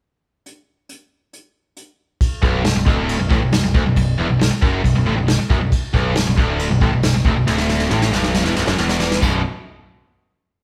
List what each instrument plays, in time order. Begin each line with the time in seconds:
0.46 closed hi-hat
0.89 closed hi-hat
1.33 closed hi-hat
1.77 closed hi-hat
2.21 kick, crash
2.42 picked electric bass B0, overdriven electric guitar B1, kick
2.63 picked electric bass B0, overdriven electric guitar B1, snare, crash
2.75 picked electric bass B0, overdriven electric guitar B1
2.86 picked electric bass D1, overdriven electric guitar D2, kick
3.09 crash
3.19 picked electric bass B0, overdriven electric guitar B1
3.31 picked electric bass A1, overdriven electric guitar A2, kick
3.41 picked electric bass B0, overdriven electric guitar B1
3.52 picked electric bass B0, overdriven electric guitar B1, snare, crash
3.63 picked electric bass B0, overdriven electric guitar B1
3.74 picked electric bass D1, overdriven electric guitar D2, kick
3.86 picked electric bass B0, overdriven electric guitar B1
3.96 picked electric bass B0, overdriven electric guitar B1, kick, crash
4.19 picked electric bass E1, overdriven electric guitar E2
4.30 picked electric bass B0, overdriven electric guitar B1
4.41 picked electric bass B0, overdriven electric guitar B1, snare, crash
4.51 muted distorted electric guitar stroke, muted overdriven electric guitar stroke, muted picked electric bass stroke
4.62 picked electric bass F#1, overdriven electric guitar F#2, kick
4.84 picked electric bass B0, overdriven electric guitar B1, kick, crash
4.95 picked electric bass B0, overdriven electric guitar B1
5.06 picked electric bass A1, overdriven electric guitar A2
5.17 picked electric bass B0, overdriven electric guitar B1
5.27 picked electric bass B0, overdriven electric guitar B1, snare, crash
5.38 muted overdriven electric guitar stroke, muted distorted electric guitar stroke
5.50 picked electric bass F#1, overdriven electric guitar F#2, kick
5.61 picked electric bass B0, overdriven electric guitar B1
5.72 kick, crash
5.94 picked electric bass B0, overdriven electric guitar B1, kick
6.15 picked electric bass B0, overdriven electric guitar B1, snare, crash
6.26 picked electric bass B0, overdriven electric guitar B1
6.38 picked electric bass D1, overdriven electric guitar D2, kick
6.59 crash
6.70 picked electric bass B0, overdriven electric guitar B1
6.81 picked electric bass A1, overdriven electric guitar A2, kick
6.92 picked electric bass B0, overdriven electric guitar B1
7.03 picked electric bass B0, overdriven electric guitar B1, snare, crash
7.15 picked electric bass B0, overdriven electric guitar B1
7.25 picked electric bass D1, overdriven electric guitar D2, kick
7.36 picked electric bass B0, overdriven electric guitar B1
7.46 picked electric bass D1, overdriven electric guitar D2, snare
7.58 snare
7.70 snare
7.80 snare
7.91 picked electric bass A1, overdriven electric guitar A2, snare
8.02 snare
8.12 picked electric bass B0, overdriven electric guitar B1, snare
8.24 snare
8.35 snare
8.44 picked electric bass E1, overdriven electric guitar E2, snare
8.56 picked electric bass B0, overdriven electric guitar B1, snare
8.67 picked electric bass F#1, overdriven electric guitar F#2, snare
8.78 picked electric bass E1, overdriven electric guitar E2, snare
8.89 snare
9.00 snare
9.12 snare
9.21 picked electric bass B0, overdriven electric guitar B1 F#2 B2, kick, crash